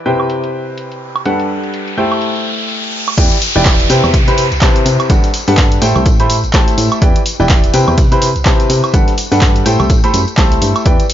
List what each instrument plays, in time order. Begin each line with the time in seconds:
Already playing: riser
0.06 grand piano C3 E4 G4 B4 C5 G5
0.20 high woodblock
0.30 closed hi-hat
0.44 closed hi-hat
0.78 closed hi-hat
0.92 closed hi-hat
1.16 closed hi-hat, high woodblock
1.26 grand piano G3 D4 G4 A4 B4 F#5, closed hi-hat
1.40 closed hi-hat
1.64 closed hi-hat
1.74 closed hi-hat
1.88 closed hi-hat
1.98 grand piano A3 E4 G4 A4 C5 G5
2.12 closed hi-hat, high woodblock
2.22 closed hi-hat
2.36 closed hi-hat
2.70 closed hi-hat
2.84 closed hi-hat
3.08 closed hi-hat, high woodblock
3.17 fm bass E2, grand piano E3 E4 G4 B4 D5 G5, kick, closed hi-hat, crash, tambourine, downlifter
3.32 closed hi-hat, tambourine
3.42 closed hi-hat, open hi-hat, tambourine
3.55 fm bass E1, grand piano E3 E4 G4 B4 D5 G5, tambourine
3.65 kick, snare, clap, closed hi-hat, tambourine
3.80 closed hi-hat, tambourine
3.90 grand piano C3 E4 G4 B4 C5 G5, fm bass C3, snare, closed hi-hat, open hi-hat, tambourine
4.04 fm bass E2, tambourine, high woodblock
4.14 fm bass C3, kick, closed hi-hat, open hi-hat, tambourine
4.28 grand piano C3 E4 G4 B4 C5 B5, closed hi-hat, tambourine
4.38 closed hi-hat, open hi-hat, tambourine
4.52 fm bass C2, closed hi-hat, tambourine
4.61 grand piano C3 E4 G4 B4 C5 A5, kick, snare, clap, closed hi-hat, tambourine
4.75 closed hi-hat, tambourine
4.86 fm bass C3, closed hi-hat, open hi-hat, tambourine
5.00 closed hi-hat, tambourine, high woodblock
5.10 fm bass G1, grand piano G3 D4 G4 A4 B4 F#5, kick, closed hi-hat, tambourine
5.24 snare, closed hi-hat, tambourine
5.34 closed hi-hat, open hi-hat, tambourine
5.47 fm bass G2, grand piano G3 D4 G4 A4 B4 F#5, open hi-hat, tambourine
5.57 kick, snare, clap, closed hi-hat, tambourine
5.72 closed hi-hat, tambourine
5.82 fm bass A2, grand piano A3 E4 G4 A4 C5 G5, closed hi-hat, open hi-hat, tambourine
5.96 fm bass C2, closed hi-hat, tambourine, high woodblock
6.06 fm bass A2, kick, closed hi-hat, tambourine
6.20 grand piano A3 E4 G4 A4 C5 B5, closed hi-hat, tambourine
6.30 closed hi-hat, open hi-hat, tambourine
6.44 fm bass A1, closed hi-hat, tambourine
6.53 grand piano A3 E4 G4 A4 C5 A5, kick, snare, clap, closed hi-hat, tambourine
6.68 closed hi-hat, tambourine
6.78 fm bass A2, closed hi-hat, open hi-hat, tambourine
6.92 closed hi-hat, tambourine, high woodblock
7.02 fm bass E2, grand piano E3 E4 G4 B4 D5 G5, kick, closed hi-hat, tambourine
7.16 closed hi-hat, tambourine
7.26 closed hi-hat, open hi-hat, tambourine
7.40 fm bass E1, grand piano E3 E4 G4 B4 D5 G5, tambourine
7.49 kick, snare, clap, closed hi-hat, tambourine
7.64 closed hi-hat, tambourine
7.73 grand piano C3 E4 G4 B4 C5 G5, fm bass C3, snare, closed hi-hat, open hi-hat, tambourine
7.88 fm bass E2, tambourine, high woodblock
7.98 fm bass C3, kick, closed hi-hat, open hi-hat, tambourine
8.12 grand piano C3 E4 G4 B4 C5 B5, closed hi-hat, tambourine
8.22 closed hi-hat, open hi-hat, tambourine
8.36 fm bass C2, closed hi-hat, tambourine
8.45 grand piano C3 E4 G4 B4 C5 A5, kick, snare, clap, closed hi-hat, tambourine
8.60 closed hi-hat, tambourine
8.70 fm bass C3, closed hi-hat, open hi-hat, tambourine
8.84 closed hi-hat, tambourine, high woodblock
8.94 fm bass G1, grand piano G3 D4 G4 A4 B4 F#5, kick, closed hi-hat, tambourine
9.08 snare, closed hi-hat, tambourine
9.18 closed hi-hat, open hi-hat, tambourine
9.32 fm bass G2, grand piano G3 D4 G4 A4 B4 F#5, open hi-hat, tambourine
9.41 kick, snare, clap, closed hi-hat, tambourine
9.56 closed hi-hat, tambourine
9.66 fm bass A2, grand piano A3 E4 G4 A4 C5 G5, closed hi-hat, open hi-hat, tambourine
9.80 fm bass C2, closed hi-hat, tambourine, high woodblock
9.90 fm bass A2, kick, closed hi-hat, tambourine
10.04 grand piano A3 E4 G4 A4 C5 B5, closed hi-hat, tambourine
10.14 fm bass F#2, closed hi-hat, open hi-hat, tambourine
10.28 closed hi-hat, tambourine
10.37 fm bass C2, grand piano A3 E4 G4 A4 C5 A5, kick, snare, clap, closed hi-hat, tambourine
10.52 closed hi-hat, tambourine
10.62 fm bass G2, closed hi-hat, open hi-hat, tambourine
10.76 closed hi-hat, tambourine, high woodblock
10.85 fm bass E2, grand piano E3 E4 G4 B4 D5 G5, kick, closed hi-hat, tambourine
11.00 closed hi-hat, tambourine
11.10 closed hi-hat, open hi-hat, tambourine